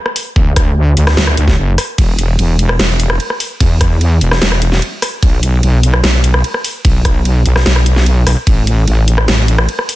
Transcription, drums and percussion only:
0.06 cross-stick medium
0.16 open hi-hat loud
0.36 kick loud
0.56 kick loud
0.56 cross-stick medium
0.56 closed hi-hat medium
0.97 closed hi-hat medium
1.07 cross-stick medium
1.07 snare soft
1.07 closed hi-hat soft
1.17 snare loud
1.27 cross-stick medium
1.37 closed hi-hat medium
1.48 kick medium
1.48 snare soft
1.78 cross-stick medium
1.78 open hi-hat loud
1.98 kick loud
1.98 ride medium
2.19 closed hi-hat medium
2.39 ride soft
2.59 closed hi-hat medium
2.69 cross-stick medium
2.79 snare loud
2.79 ride medium
3.00 closed hi-hat medium
3.10 cross-stick medium
3.20 ride soft
3.30 cross-stick soft
3.40 open hi-hat loud
3.60 kick loud
3.60 ride medium
3.81 kick loud
3.81 cross-stick medium
3.81 closed hi-hat medium
4.01 ride soft
4.21 closed hi-hat medium
4.31 cross-stick medium
4.31 snare soft
4.42 snare loud
4.42 ride medium
4.52 cross-stick medium
4.62 closed hi-hat medium
4.72 snare soft
4.82 ride soft
5.02 cross-stick medium
5.02 open hi-hat loud
5.23 kick loud
5.23 ride medium
5.43 closed hi-hat medium
5.63 ride soft
5.83 closed hi-hat medium
5.94 cross-stick medium
6.04 snare loud
6.04 ride medium
6.24 closed hi-hat medium
6.34 cross-stick medium
6.44 ride soft
6.54 cross-stick medium
6.64 open hi-hat medium
6.85 kick loud
6.85 ride medium
7.05 kick loud
7.05 cross-stick medium
7.05 closed hi-hat medium
7.25 ride soft
7.46 closed hi-hat medium
7.56 cross-stick medium
7.56 snare soft
7.66 snare loud
7.66 ride medium
7.76 cross-stick medium
7.86 closed hi-hat medium
7.96 snare soft
8.06 ride soft
8.27 cross-stick medium
8.27 open hi-hat medium
8.47 kick loud
8.47 ride medium
8.67 closed hi-hat medium
8.88 ride soft
9.08 closed hi-hat medium
9.18 cross-stick medium
9.28 snare loud
9.28 ride medium
9.48 closed hi-hat medium
9.58 cross-stick medium
9.69 ride soft
9.79 cross-stick medium
9.89 open hi-hat loud

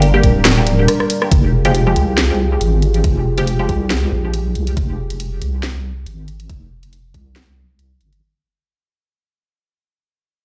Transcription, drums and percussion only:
0.02 closed hi-hat medium
0.23 kick medium
0.23 closed hi-hat medium
0.45 snare loud
0.45 clap medium
0.45 closed hi-hat medium
0.67 closed hi-hat medium
0.88 cross-stick medium
0.88 closed hi-hat medium
1.00 cross-stick medium
1.10 open hi-hat loud
1.22 cross-stick medium
1.31 kick loud
1.31 closed hi-hat medium
1.65 closed hi-hat medium
1.75 closed hi-hat medium
1.96 closed hi-hat medium
2.18 snare loud
2.18 closed hi-hat medium
2.61 closed hi-hat medium
2.82 closed hi-hat medium
2.94 closed hi-hat medium
3.04 kick loud
3.04 closed hi-hat medium
3.38 closed hi-hat medium
3.47 closed hi-hat medium
3.69 kick medium
3.69 closed hi-hat medium
3.90 snare loud
3.90 closed hi-hat medium
4.34 closed hi-hat medium
4.55 closed hi-hat soft
4.67 closed hi-hat soft
4.77 kick loud
4.77 closed hi-hat medium
5.10 closed hi-hat medium
5.20 closed hi-hat medium
5.42 closed hi-hat medium
5.63 snare loud
5.63 closed hi-hat medium
6.06 closed hi-hat medium
6.28 closed hi-hat soft
6.40 closed hi-hat soft
6.50 kick loud
6.50 closed hi-hat medium
6.83 closed hi-hat soft
6.93 closed hi-hat medium
7.14 kick medium
7.14 closed hi-hat soft
7.36 snare loud
7.36 closed hi-hat medium
7.79 closed hi-hat medium
8.01 closed hi-hat soft
8.13 closed hi-hat soft

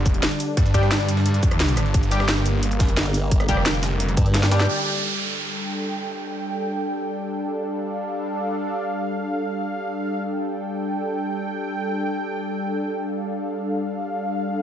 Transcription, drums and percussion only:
0.06 kick loud
0.06 closed hi-hat medium
0.06 shaker medium
0.14 closed hi-hat soft
0.23 snare loud
0.23 closed hi-hat medium
0.31 closed hi-hat soft
0.40 closed hi-hat medium
0.40 open hi-hat medium
0.40 shaker medium
0.57 kick loud
0.57 closed hi-hat medium
0.66 closed hi-hat soft
0.66 shaker soft
0.74 kick medium
0.74 closed hi-hat medium
0.74 shaker medium
0.83 cross-stick soft
0.83 closed hi-hat soft
0.91 snare loud
0.91 closed hi-hat medium
1.00 closed hi-hat soft
1.00 shaker soft
1.09 closed hi-hat medium
1.09 shaker medium
1.17 snare medium
1.26 closed hi-hat medium
1.34 closed hi-hat soft
1.34 shaker soft
1.43 kick loud
1.43 closed hi-hat medium
1.43 shaker medium
1.51 cross-stick soft
1.51 closed hi-hat soft
1.60 snare loud
1.60 closed hi-hat medium
1.69 closed hi-hat soft
1.69 shaker soft
1.77 cross-stick soft
1.77 closed hi-hat medium
1.77 shaker medium
1.86 closed hi-hat soft
1.94 kick loud
1.94 closed hi-hat medium
2.03 closed hi-hat soft
2.03 shaker soft
2.11 closed hi-hat medium
2.11 shaker medium
2.20 cross-stick soft
2.20 snare medium
2.28 snare loud
2.28 closed hi-hat medium
2.37 shaker soft
2.46 closed hi-hat medium
2.46 shaker medium
2.63 closed hi-hat medium
2.71 closed hi-hat soft
2.71 shaker soft
2.80 kick loud
2.80 snare loud
2.80 closed hi-hat medium
2.80 shaker medium
2.88 closed hi-hat soft
2.97 snare loud
2.97 closed hi-hat medium
3.06 closed hi-hat soft
3.14 closed hi-hat medium
3.14 open hi-hat medium
3.14 shaker medium
3.31 kick loud
3.31 closed hi-hat medium
3.31 closed hi-hat loud
3.40 cross-stick medium
3.40 closed hi-hat soft
3.40 shaker soft
3.49 kick medium
3.49 closed hi-hat medium
3.49 shaker medium
3.57 cross-stick soft
3.66 snare loud
3.66 closed hi-hat medium
3.66 closed hi-hat loud
3.74 shaker soft
3.83 snare loud
3.83 closed hi-hat medium
3.83 shaker medium
4.00 closed hi-hat loud
4.00 closed hi-hat medium
4.09 closed hi-hat soft
4.09 shaker soft
4.17 kick loud
4.17 closed hi-hat medium
4.17 shaker medium
4.26 closed hi-hat soft
4.34 snare medium
4.34 snare loud
4.34 closed hi-hat medium
4.34 closed hi-hat loud
4.43 snare loud
4.43 snare medium
4.43 closed hi-hat medium
4.43 closed hi-hat soft
4.43 shaker soft
4.51 snare loud
4.51 closed hi-hat medium
4.51 shaker medium
4.60 snare medium
4.60 closed hi-hat soft

